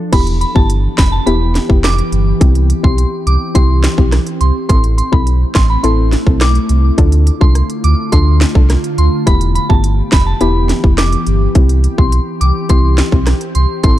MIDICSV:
0, 0, Header, 1, 6, 480
1, 0, Start_track
1, 0, Tempo, 571429
1, 105, Time_signature, 4, 2, 24, 8
1, 11752, End_track
2, 0, Start_track
2, 0, Title_t, "Synth bell"
2, 0, Program_c, 0, 98
2, 105, Note_on_c, 0, 83, 100
2, 212, Note_off_c, 0, 83, 0
2, 343, Note_on_c, 0, 83, 83
2, 451, Note_off_c, 0, 83, 0
2, 464, Note_on_c, 0, 81, 81
2, 571, Note_off_c, 0, 81, 0
2, 823, Note_on_c, 0, 83, 85
2, 931, Note_off_c, 0, 83, 0
2, 941, Note_on_c, 0, 81, 76
2, 1049, Note_off_c, 0, 81, 0
2, 1060, Note_on_c, 0, 83, 96
2, 1401, Note_off_c, 0, 83, 0
2, 1544, Note_on_c, 0, 86, 89
2, 1883, Note_off_c, 0, 86, 0
2, 2384, Note_on_c, 0, 84, 76
2, 2598, Note_off_c, 0, 84, 0
2, 2744, Note_on_c, 0, 86, 91
2, 2958, Note_off_c, 0, 86, 0
2, 2981, Note_on_c, 0, 84, 96
2, 3321, Note_off_c, 0, 84, 0
2, 3701, Note_on_c, 0, 84, 75
2, 3810, Note_off_c, 0, 84, 0
2, 3939, Note_on_c, 0, 84, 105
2, 4048, Note_off_c, 0, 84, 0
2, 4181, Note_on_c, 0, 84, 81
2, 4289, Note_off_c, 0, 84, 0
2, 4304, Note_on_c, 0, 83, 80
2, 4411, Note_off_c, 0, 83, 0
2, 4664, Note_on_c, 0, 84, 90
2, 4771, Note_off_c, 0, 84, 0
2, 4786, Note_on_c, 0, 83, 83
2, 4892, Note_off_c, 0, 83, 0
2, 4900, Note_on_c, 0, 84, 100
2, 5241, Note_off_c, 0, 84, 0
2, 5384, Note_on_c, 0, 86, 87
2, 5723, Note_off_c, 0, 86, 0
2, 6222, Note_on_c, 0, 84, 72
2, 6437, Note_off_c, 0, 84, 0
2, 6586, Note_on_c, 0, 86, 87
2, 6799, Note_off_c, 0, 86, 0
2, 6821, Note_on_c, 0, 84, 98
2, 7162, Note_off_c, 0, 84, 0
2, 7546, Note_on_c, 0, 84, 76
2, 7652, Note_off_c, 0, 84, 0
2, 7784, Note_on_c, 0, 83, 100
2, 7891, Note_off_c, 0, 83, 0
2, 8023, Note_on_c, 0, 83, 79
2, 8131, Note_off_c, 0, 83, 0
2, 8142, Note_on_c, 0, 81, 80
2, 8250, Note_off_c, 0, 81, 0
2, 8503, Note_on_c, 0, 83, 85
2, 8610, Note_off_c, 0, 83, 0
2, 8622, Note_on_c, 0, 81, 80
2, 8730, Note_off_c, 0, 81, 0
2, 8744, Note_on_c, 0, 83, 97
2, 9083, Note_off_c, 0, 83, 0
2, 9223, Note_on_c, 0, 86, 88
2, 9563, Note_off_c, 0, 86, 0
2, 10065, Note_on_c, 0, 84, 74
2, 10278, Note_off_c, 0, 84, 0
2, 10422, Note_on_c, 0, 86, 88
2, 10637, Note_off_c, 0, 86, 0
2, 10665, Note_on_c, 0, 84, 97
2, 11004, Note_off_c, 0, 84, 0
2, 11383, Note_on_c, 0, 84, 79
2, 11491, Note_off_c, 0, 84, 0
2, 11620, Note_on_c, 0, 84, 108
2, 11729, Note_off_c, 0, 84, 0
2, 11752, End_track
3, 0, Start_track
3, 0, Title_t, "Synth pluck"
3, 0, Program_c, 1, 84
3, 103, Note_on_c, 1, 59, 97
3, 105, Note_on_c, 1, 64, 85
3, 109, Note_on_c, 1, 67, 107
3, 435, Note_off_c, 1, 59, 0
3, 436, Note_off_c, 1, 64, 0
3, 438, Note_off_c, 1, 67, 0
3, 462, Note_on_c, 1, 59, 83
3, 465, Note_on_c, 1, 64, 75
3, 468, Note_on_c, 1, 67, 89
3, 609, Note_off_c, 1, 59, 0
3, 610, Note_off_c, 1, 64, 0
3, 611, Note_off_c, 1, 67, 0
3, 1062, Note_on_c, 1, 59, 104
3, 1064, Note_on_c, 1, 64, 93
3, 1067, Note_on_c, 1, 67, 110
3, 1395, Note_off_c, 1, 59, 0
3, 1396, Note_off_c, 1, 64, 0
3, 1397, Note_off_c, 1, 67, 0
3, 1420, Note_on_c, 1, 59, 78
3, 1423, Note_on_c, 1, 64, 72
3, 1425, Note_on_c, 1, 67, 88
3, 1568, Note_off_c, 1, 59, 0
3, 1569, Note_off_c, 1, 64, 0
3, 1570, Note_off_c, 1, 67, 0
3, 2021, Note_on_c, 1, 60, 93
3, 2023, Note_on_c, 1, 64, 90
3, 2025, Note_on_c, 1, 67, 104
3, 2354, Note_off_c, 1, 60, 0
3, 2355, Note_off_c, 1, 64, 0
3, 2356, Note_off_c, 1, 67, 0
3, 2380, Note_on_c, 1, 60, 84
3, 2382, Note_on_c, 1, 64, 71
3, 2385, Note_on_c, 1, 67, 88
3, 2528, Note_off_c, 1, 60, 0
3, 2529, Note_off_c, 1, 64, 0
3, 2530, Note_off_c, 1, 67, 0
3, 2979, Note_on_c, 1, 60, 101
3, 2981, Note_on_c, 1, 64, 95
3, 2984, Note_on_c, 1, 67, 116
3, 3313, Note_off_c, 1, 60, 0
3, 3314, Note_off_c, 1, 64, 0
3, 3316, Note_off_c, 1, 67, 0
3, 3341, Note_on_c, 1, 60, 82
3, 3343, Note_on_c, 1, 64, 72
3, 3346, Note_on_c, 1, 67, 86
3, 3488, Note_off_c, 1, 60, 0
3, 3489, Note_off_c, 1, 64, 0
3, 3491, Note_off_c, 1, 67, 0
3, 3941, Note_on_c, 1, 60, 94
3, 3943, Note_on_c, 1, 64, 85
3, 3946, Note_on_c, 1, 69, 103
3, 4274, Note_off_c, 1, 60, 0
3, 4275, Note_off_c, 1, 64, 0
3, 4277, Note_off_c, 1, 69, 0
3, 4301, Note_on_c, 1, 60, 81
3, 4303, Note_on_c, 1, 64, 74
3, 4305, Note_on_c, 1, 69, 86
3, 4448, Note_off_c, 1, 60, 0
3, 4449, Note_off_c, 1, 64, 0
3, 4450, Note_off_c, 1, 69, 0
3, 4901, Note_on_c, 1, 60, 100
3, 4904, Note_on_c, 1, 64, 95
3, 4906, Note_on_c, 1, 69, 117
3, 5234, Note_off_c, 1, 60, 0
3, 5236, Note_off_c, 1, 64, 0
3, 5237, Note_off_c, 1, 69, 0
3, 5262, Note_on_c, 1, 60, 75
3, 5265, Note_on_c, 1, 64, 70
3, 5267, Note_on_c, 1, 69, 85
3, 5408, Note_off_c, 1, 60, 0
3, 5410, Note_off_c, 1, 64, 0
3, 5411, Note_off_c, 1, 69, 0
3, 5861, Note_on_c, 1, 62, 98
3, 5864, Note_on_c, 1, 65, 85
3, 5866, Note_on_c, 1, 69, 104
3, 6194, Note_off_c, 1, 62, 0
3, 6196, Note_off_c, 1, 65, 0
3, 6197, Note_off_c, 1, 69, 0
3, 6222, Note_on_c, 1, 62, 81
3, 6223, Note_on_c, 1, 65, 72
3, 6226, Note_on_c, 1, 69, 86
3, 6368, Note_off_c, 1, 62, 0
3, 6369, Note_off_c, 1, 65, 0
3, 6371, Note_off_c, 1, 69, 0
3, 6822, Note_on_c, 1, 62, 101
3, 6824, Note_on_c, 1, 65, 89
3, 6827, Note_on_c, 1, 69, 108
3, 7155, Note_off_c, 1, 62, 0
3, 7156, Note_off_c, 1, 65, 0
3, 7157, Note_off_c, 1, 69, 0
3, 7182, Note_on_c, 1, 62, 81
3, 7184, Note_on_c, 1, 65, 69
3, 7187, Note_on_c, 1, 69, 86
3, 7329, Note_off_c, 1, 62, 0
3, 7330, Note_off_c, 1, 65, 0
3, 7331, Note_off_c, 1, 69, 0
3, 7782, Note_on_c, 1, 59, 94
3, 7784, Note_on_c, 1, 64, 89
3, 7786, Note_on_c, 1, 67, 103
3, 8115, Note_off_c, 1, 59, 0
3, 8116, Note_off_c, 1, 64, 0
3, 8117, Note_off_c, 1, 67, 0
3, 8142, Note_on_c, 1, 59, 82
3, 8145, Note_on_c, 1, 64, 71
3, 8148, Note_on_c, 1, 67, 88
3, 8289, Note_off_c, 1, 59, 0
3, 8290, Note_off_c, 1, 64, 0
3, 8291, Note_off_c, 1, 67, 0
3, 8742, Note_on_c, 1, 59, 99
3, 8743, Note_on_c, 1, 64, 95
3, 8745, Note_on_c, 1, 67, 110
3, 9075, Note_off_c, 1, 59, 0
3, 9075, Note_off_c, 1, 64, 0
3, 9076, Note_off_c, 1, 67, 0
3, 9103, Note_on_c, 1, 59, 77
3, 9106, Note_on_c, 1, 64, 72
3, 9107, Note_on_c, 1, 67, 87
3, 9249, Note_off_c, 1, 59, 0
3, 9250, Note_off_c, 1, 64, 0
3, 9251, Note_off_c, 1, 67, 0
3, 9703, Note_on_c, 1, 60, 93
3, 9705, Note_on_c, 1, 64, 87
3, 9708, Note_on_c, 1, 67, 105
3, 10035, Note_off_c, 1, 60, 0
3, 10036, Note_off_c, 1, 64, 0
3, 10038, Note_off_c, 1, 67, 0
3, 10062, Note_on_c, 1, 60, 77
3, 10065, Note_on_c, 1, 64, 73
3, 10067, Note_on_c, 1, 67, 85
3, 10209, Note_off_c, 1, 60, 0
3, 10210, Note_off_c, 1, 64, 0
3, 10211, Note_off_c, 1, 67, 0
3, 10663, Note_on_c, 1, 60, 104
3, 10666, Note_on_c, 1, 64, 91
3, 10668, Note_on_c, 1, 67, 114
3, 10995, Note_off_c, 1, 60, 0
3, 10997, Note_off_c, 1, 64, 0
3, 10998, Note_off_c, 1, 67, 0
3, 11023, Note_on_c, 1, 60, 78
3, 11025, Note_on_c, 1, 64, 75
3, 11029, Note_on_c, 1, 67, 85
3, 11169, Note_off_c, 1, 60, 0
3, 11170, Note_off_c, 1, 64, 0
3, 11172, Note_off_c, 1, 67, 0
3, 11623, Note_on_c, 1, 60, 100
3, 11625, Note_on_c, 1, 64, 92
3, 11627, Note_on_c, 1, 69, 106
3, 11752, Note_off_c, 1, 60, 0
3, 11752, Note_off_c, 1, 64, 0
3, 11752, Note_off_c, 1, 69, 0
3, 11752, End_track
4, 0, Start_track
4, 0, Title_t, "Ambient pad"
4, 0, Program_c, 2, 92
4, 0, Note_on_c, 2, 53, 84
4, 0, Note_on_c, 2, 62, 76
4, 86, Note_off_c, 2, 53, 0
4, 86, Note_off_c, 2, 62, 0
4, 103, Note_on_c, 2, 52, 88
4, 103, Note_on_c, 2, 67, 96
4, 105, Note_on_c, 2, 59, 80
4, 2006, Note_off_c, 2, 59, 0
4, 2026, Note_on_c, 2, 60, 80
4, 3910, Note_off_c, 2, 52, 0
4, 3910, Note_off_c, 2, 67, 0
4, 3926, Note_off_c, 2, 60, 0
4, 3946, Note_on_c, 2, 60, 84
4, 3947, Note_on_c, 2, 64, 93
4, 3948, Note_on_c, 2, 57, 77
4, 5846, Note_off_c, 2, 60, 0
4, 5847, Note_off_c, 2, 57, 0
4, 5847, Note_off_c, 2, 64, 0
4, 5862, Note_on_c, 2, 50, 86
4, 5863, Note_on_c, 2, 57, 78
4, 5864, Note_on_c, 2, 65, 94
4, 7764, Note_off_c, 2, 50, 0
4, 7765, Note_off_c, 2, 57, 0
4, 7765, Note_off_c, 2, 65, 0
4, 7781, Note_on_c, 2, 59, 80
4, 7782, Note_on_c, 2, 52, 84
4, 7783, Note_on_c, 2, 67, 96
4, 9684, Note_off_c, 2, 59, 0
4, 9685, Note_off_c, 2, 67, 0
4, 9707, Note_on_c, 2, 60, 78
4, 9707, Note_on_c, 2, 67, 94
4, 11590, Note_off_c, 2, 52, 0
4, 11607, Note_off_c, 2, 60, 0
4, 11607, Note_off_c, 2, 67, 0
4, 11624, Note_on_c, 2, 60, 85
4, 11625, Note_on_c, 2, 64, 96
4, 11627, Note_on_c, 2, 57, 78
4, 11752, Note_off_c, 2, 57, 0
4, 11752, Note_off_c, 2, 60, 0
4, 11752, Note_off_c, 2, 64, 0
4, 11752, End_track
5, 0, Start_track
5, 0, Title_t, "Sub bass"
5, 0, Program_c, 3, 38
5, 107, Note_on_c, 3, 28, 112
5, 377, Note_off_c, 3, 28, 0
5, 468, Note_on_c, 3, 31, 91
5, 738, Note_off_c, 3, 31, 0
5, 828, Note_on_c, 3, 29, 93
5, 1008, Note_off_c, 3, 29, 0
5, 1065, Note_on_c, 3, 28, 110
5, 1336, Note_off_c, 3, 28, 0
5, 1426, Note_on_c, 3, 29, 93
5, 1697, Note_off_c, 3, 29, 0
5, 1783, Note_on_c, 3, 31, 96
5, 1965, Note_off_c, 3, 31, 0
5, 2025, Note_on_c, 3, 36, 114
5, 2296, Note_off_c, 3, 36, 0
5, 2387, Note_on_c, 3, 35, 86
5, 2567, Note_off_c, 3, 35, 0
5, 2743, Note_on_c, 3, 36, 100
5, 2834, Note_off_c, 3, 36, 0
5, 2986, Note_on_c, 3, 36, 110
5, 3257, Note_off_c, 3, 36, 0
5, 3342, Note_on_c, 3, 35, 98
5, 3524, Note_off_c, 3, 35, 0
5, 3702, Note_on_c, 3, 36, 96
5, 3794, Note_off_c, 3, 36, 0
5, 3944, Note_on_c, 3, 33, 110
5, 4216, Note_off_c, 3, 33, 0
5, 4306, Note_on_c, 3, 35, 87
5, 4577, Note_off_c, 3, 35, 0
5, 4667, Note_on_c, 3, 33, 99
5, 4847, Note_off_c, 3, 33, 0
5, 4903, Note_on_c, 3, 33, 110
5, 5175, Note_off_c, 3, 33, 0
5, 5264, Note_on_c, 3, 35, 94
5, 5536, Note_off_c, 3, 35, 0
5, 5624, Note_on_c, 3, 36, 100
5, 5805, Note_off_c, 3, 36, 0
5, 5864, Note_on_c, 3, 38, 112
5, 6136, Note_off_c, 3, 38, 0
5, 6227, Note_on_c, 3, 36, 90
5, 6407, Note_off_c, 3, 36, 0
5, 6585, Note_on_c, 3, 38, 92
5, 6675, Note_off_c, 3, 38, 0
5, 6826, Note_on_c, 3, 38, 114
5, 7097, Note_off_c, 3, 38, 0
5, 7184, Note_on_c, 3, 36, 88
5, 7365, Note_off_c, 3, 36, 0
5, 7545, Note_on_c, 3, 38, 92
5, 7636, Note_off_c, 3, 38, 0
5, 7786, Note_on_c, 3, 28, 110
5, 8057, Note_off_c, 3, 28, 0
5, 8147, Note_on_c, 3, 31, 89
5, 8417, Note_off_c, 3, 31, 0
5, 8508, Note_on_c, 3, 29, 94
5, 8688, Note_off_c, 3, 29, 0
5, 8746, Note_on_c, 3, 28, 111
5, 9017, Note_off_c, 3, 28, 0
5, 9104, Note_on_c, 3, 29, 95
5, 9376, Note_off_c, 3, 29, 0
5, 9465, Note_on_c, 3, 31, 96
5, 9646, Note_off_c, 3, 31, 0
5, 9705, Note_on_c, 3, 36, 115
5, 9976, Note_off_c, 3, 36, 0
5, 10066, Note_on_c, 3, 35, 88
5, 10247, Note_off_c, 3, 35, 0
5, 10425, Note_on_c, 3, 36, 94
5, 10516, Note_off_c, 3, 36, 0
5, 10666, Note_on_c, 3, 36, 110
5, 10937, Note_off_c, 3, 36, 0
5, 11024, Note_on_c, 3, 35, 99
5, 11205, Note_off_c, 3, 35, 0
5, 11385, Note_on_c, 3, 36, 100
5, 11475, Note_off_c, 3, 36, 0
5, 11623, Note_on_c, 3, 33, 101
5, 11752, Note_off_c, 3, 33, 0
5, 11752, End_track
6, 0, Start_track
6, 0, Title_t, "Drums"
6, 106, Note_on_c, 9, 36, 109
6, 106, Note_on_c, 9, 42, 76
6, 106, Note_on_c, 9, 49, 104
6, 190, Note_off_c, 9, 36, 0
6, 190, Note_off_c, 9, 42, 0
6, 190, Note_off_c, 9, 49, 0
6, 226, Note_on_c, 9, 42, 57
6, 310, Note_off_c, 9, 42, 0
6, 347, Note_on_c, 9, 42, 73
6, 431, Note_off_c, 9, 42, 0
6, 468, Note_on_c, 9, 36, 92
6, 552, Note_off_c, 9, 36, 0
6, 585, Note_on_c, 9, 42, 75
6, 669, Note_off_c, 9, 42, 0
6, 824, Note_on_c, 9, 38, 115
6, 827, Note_on_c, 9, 42, 80
6, 828, Note_on_c, 9, 36, 104
6, 829, Note_on_c, 9, 26, 93
6, 908, Note_off_c, 9, 38, 0
6, 911, Note_off_c, 9, 42, 0
6, 912, Note_off_c, 9, 36, 0
6, 913, Note_off_c, 9, 26, 0
6, 1065, Note_on_c, 9, 42, 76
6, 1149, Note_off_c, 9, 42, 0
6, 1304, Note_on_c, 9, 38, 74
6, 1305, Note_on_c, 9, 42, 72
6, 1388, Note_off_c, 9, 38, 0
6, 1389, Note_off_c, 9, 42, 0
6, 1425, Note_on_c, 9, 36, 91
6, 1509, Note_off_c, 9, 36, 0
6, 1546, Note_on_c, 9, 42, 79
6, 1548, Note_on_c, 9, 37, 89
6, 1548, Note_on_c, 9, 38, 108
6, 1553, Note_on_c, 9, 26, 89
6, 1630, Note_off_c, 9, 42, 0
6, 1632, Note_off_c, 9, 37, 0
6, 1632, Note_off_c, 9, 38, 0
6, 1637, Note_off_c, 9, 26, 0
6, 1667, Note_on_c, 9, 42, 53
6, 1751, Note_off_c, 9, 42, 0
6, 1785, Note_on_c, 9, 42, 76
6, 1869, Note_off_c, 9, 42, 0
6, 2025, Note_on_c, 9, 36, 115
6, 2025, Note_on_c, 9, 42, 79
6, 2109, Note_off_c, 9, 36, 0
6, 2109, Note_off_c, 9, 42, 0
6, 2145, Note_on_c, 9, 42, 59
6, 2229, Note_off_c, 9, 42, 0
6, 2266, Note_on_c, 9, 42, 73
6, 2350, Note_off_c, 9, 42, 0
6, 2387, Note_on_c, 9, 36, 95
6, 2471, Note_off_c, 9, 36, 0
6, 2505, Note_on_c, 9, 42, 76
6, 2589, Note_off_c, 9, 42, 0
6, 2746, Note_on_c, 9, 42, 80
6, 2830, Note_off_c, 9, 42, 0
6, 2982, Note_on_c, 9, 42, 81
6, 2985, Note_on_c, 9, 36, 88
6, 3066, Note_off_c, 9, 42, 0
6, 3069, Note_off_c, 9, 36, 0
6, 3223, Note_on_c, 9, 38, 123
6, 3223, Note_on_c, 9, 42, 70
6, 3228, Note_on_c, 9, 26, 95
6, 3307, Note_off_c, 9, 38, 0
6, 3307, Note_off_c, 9, 42, 0
6, 3312, Note_off_c, 9, 26, 0
6, 3343, Note_on_c, 9, 36, 94
6, 3427, Note_off_c, 9, 36, 0
6, 3464, Note_on_c, 9, 42, 84
6, 3465, Note_on_c, 9, 37, 94
6, 3465, Note_on_c, 9, 38, 64
6, 3548, Note_off_c, 9, 42, 0
6, 3549, Note_off_c, 9, 37, 0
6, 3549, Note_off_c, 9, 38, 0
6, 3583, Note_on_c, 9, 42, 55
6, 3667, Note_off_c, 9, 42, 0
6, 3702, Note_on_c, 9, 42, 79
6, 3786, Note_off_c, 9, 42, 0
6, 3943, Note_on_c, 9, 42, 74
6, 3944, Note_on_c, 9, 36, 114
6, 4027, Note_off_c, 9, 42, 0
6, 4028, Note_off_c, 9, 36, 0
6, 4064, Note_on_c, 9, 42, 57
6, 4148, Note_off_c, 9, 42, 0
6, 4185, Note_on_c, 9, 42, 75
6, 4269, Note_off_c, 9, 42, 0
6, 4306, Note_on_c, 9, 36, 96
6, 4390, Note_off_c, 9, 36, 0
6, 4425, Note_on_c, 9, 42, 75
6, 4509, Note_off_c, 9, 42, 0
6, 4661, Note_on_c, 9, 38, 112
6, 4664, Note_on_c, 9, 42, 78
6, 4666, Note_on_c, 9, 36, 111
6, 4667, Note_on_c, 9, 26, 89
6, 4745, Note_off_c, 9, 38, 0
6, 4748, Note_off_c, 9, 42, 0
6, 4750, Note_off_c, 9, 36, 0
6, 4751, Note_off_c, 9, 26, 0
6, 4904, Note_on_c, 9, 42, 81
6, 4988, Note_off_c, 9, 42, 0
6, 5145, Note_on_c, 9, 38, 75
6, 5146, Note_on_c, 9, 42, 69
6, 5229, Note_off_c, 9, 38, 0
6, 5230, Note_off_c, 9, 42, 0
6, 5264, Note_on_c, 9, 36, 96
6, 5348, Note_off_c, 9, 36, 0
6, 5383, Note_on_c, 9, 42, 84
6, 5385, Note_on_c, 9, 37, 94
6, 5385, Note_on_c, 9, 38, 110
6, 5390, Note_on_c, 9, 26, 94
6, 5467, Note_off_c, 9, 42, 0
6, 5469, Note_off_c, 9, 37, 0
6, 5469, Note_off_c, 9, 38, 0
6, 5474, Note_off_c, 9, 26, 0
6, 5504, Note_on_c, 9, 42, 53
6, 5588, Note_off_c, 9, 42, 0
6, 5622, Note_on_c, 9, 42, 75
6, 5706, Note_off_c, 9, 42, 0
6, 5863, Note_on_c, 9, 42, 72
6, 5864, Note_on_c, 9, 36, 109
6, 5947, Note_off_c, 9, 42, 0
6, 5948, Note_off_c, 9, 36, 0
6, 5983, Note_on_c, 9, 42, 56
6, 6067, Note_off_c, 9, 42, 0
6, 6105, Note_on_c, 9, 42, 77
6, 6189, Note_off_c, 9, 42, 0
6, 6227, Note_on_c, 9, 36, 96
6, 6311, Note_off_c, 9, 36, 0
6, 6344, Note_on_c, 9, 37, 65
6, 6345, Note_on_c, 9, 42, 75
6, 6428, Note_off_c, 9, 37, 0
6, 6429, Note_off_c, 9, 42, 0
6, 6465, Note_on_c, 9, 42, 55
6, 6549, Note_off_c, 9, 42, 0
6, 6586, Note_on_c, 9, 42, 77
6, 6670, Note_off_c, 9, 42, 0
6, 6824, Note_on_c, 9, 42, 80
6, 6826, Note_on_c, 9, 36, 84
6, 6908, Note_off_c, 9, 42, 0
6, 6910, Note_off_c, 9, 36, 0
6, 7065, Note_on_c, 9, 38, 119
6, 7066, Note_on_c, 9, 42, 69
6, 7070, Note_on_c, 9, 26, 101
6, 7149, Note_off_c, 9, 38, 0
6, 7150, Note_off_c, 9, 42, 0
6, 7154, Note_off_c, 9, 26, 0
6, 7184, Note_on_c, 9, 36, 99
6, 7268, Note_off_c, 9, 36, 0
6, 7305, Note_on_c, 9, 42, 85
6, 7307, Note_on_c, 9, 37, 88
6, 7307, Note_on_c, 9, 38, 65
6, 7389, Note_off_c, 9, 42, 0
6, 7391, Note_off_c, 9, 37, 0
6, 7391, Note_off_c, 9, 38, 0
6, 7426, Note_on_c, 9, 42, 52
6, 7510, Note_off_c, 9, 42, 0
6, 7544, Note_on_c, 9, 42, 74
6, 7628, Note_off_c, 9, 42, 0
6, 7786, Note_on_c, 9, 36, 116
6, 7786, Note_on_c, 9, 42, 75
6, 7870, Note_off_c, 9, 36, 0
6, 7870, Note_off_c, 9, 42, 0
6, 7904, Note_on_c, 9, 42, 62
6, 7988, Note_off_c, 9, 42, 0
6, 8026, Note_on_c, 9, 42, 76
6, 8110, Note_off_c, 9, 42, 0
6, 8147, Note_on_c, 9, 36, 92
6, 8231, Note_off_c, 9, 36, 0
6, 8264, Note_on_c, 9, 42, 74
6, 8348, Note_off_c, 9, 42, 0
6, 8501, Note_on_c, 9, 38, 110
6, 8504, Note_on_c, 9, 42, 78
6, 8506, Note_on_c, 9, 26, 94
6, 8507, Note_on_c, 9, 36, 108
6, 8585, Note_off_c, 9, 38, 0
6, 8588, Note_off_c, 9, 42, 0
6, 8590, Note_off_c, 9, 26, 0
6, 8591, Note_off_c, 9, 36, 0
6, 8742, Note_on_c, 9, 42, 76
6, 8826, Note_off_c, 9, 42, 0
6, 8982, Note_on_c, 9, 38, 73
6, 8983, Note_on_c, 9, 42, 72
6, 9066, Note_off_c, 9, 38, 0
6, 9067, Note_off_c, 9, 42, 0
6, 9104, Note_on_c, 9, 36, 98
6, 9188, Note_off_c, 9, 36, 0
6, 9223, Note_on_c, 9, 42, 82
6, 9225, Note_on_c, 9, 37, 93
6, 9225, Note_on_c, 9, 38, 113
6, 9230, Note_on_c, 9, 26, 88
6, 9307, Note_off_c, 9, 42, 0
6, 9309, Note_off_c, 9, 37, 0
6, 9309, Note_off_c, 9, 38, 0
6, 9314, Note_off_c, 9, 26, 0
6, 9345, Note_on_c, 9, 42, 52
6, 9429, Note_off_c, 9, 42, 0
6, 9463, Note_on_c, 9, 42, 77
6, 9547, Note_off_c, 9, 42, 0
6, 9703, Note_on_c, 9, 42, 74
6, 9704, Note_on_c, 9, 36, 107
6, 9787, Note_off_c, 9, 42, 0
6, 9788, Note_off_c, 9, 36, 0
6, 9823, Note_on_c, 9, 42, 59
6, 9907, Note_off_c, 9, 42, 0
6, 9945, Note_on_c, 9, 42, 73
6, 10029, Note_off_c, 9, 42, 0
6, 10066, Note_on_c, 9, 36, 98
6, 10150, Note_off_c, 9, 36, 0
6, 10184, Note_on_c, 9, 42, 80
6, 10268, Note_off_c, 9, 42, 0
6, 10425, Note_on_c, 9, 42, 78
6, 10509, Note_off_c, 9, 42, 0
6, 10662, Note_on_c, 9, 42, 78
6, 10665, Note_on_c, 9, 36, 90
6, 10746, Note_off_c, 9, 42, 0
6, 10749, Note_off_c, 9, 36, 0
6, 10903, Note_on_c, 9, 38, 117
6, 10904, Note_on_c, 9, 42, 70
6, 10909, Note_on_c, 9, 26, 99
6, 10987, Note_off_c, 9, 38, 0
6, 10988, Note_off_c, 9, 42, 0
6, 10993, Note_off_c, 9, 26, 0
6, 11024, Note_on_c, 9, 36, 96
6, 11108, Note_off_c, 9, 36, 0
6, 11143, Note_on_c, 9, 42, 84
6, 11145, Note_on_c, 9, 37, 92
6, 11145, Note_on_c, 9, 38, 68
6, 11227, Note_off_c, 9, 42, 0
6, 11229, Note_off_c, 9, 37, 0
6, 11229, Note_off_c, 9, 38, 0
6, 11263, Note_on_c, 9, 42, 55
6, 11347, Note_off_c, 9, 42, 0
6, 11381, Note_on_c, 9, 42, 74
6, 11465, Note_off_c, 9, 42, 0
6, 11621, Note_on_c, 9, 42, 76
6, 11623, Note_on_c, 9, 36, 113
6, 11705, Note_off_c, 9, 42, 0
6, 11707, Note_off_c, 9, 36, 0
6, 11752, End_track
0, 0, End_of_file